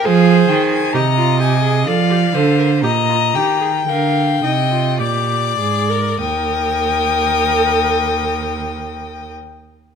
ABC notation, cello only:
X:1
M:3/4
L:1/8
Q:1/4=54
K:Eb
V:1 name="Cello" clef=bass
F, E, C,2 F, D, | B,, E, D, C, B,, A,, | E,,6 |]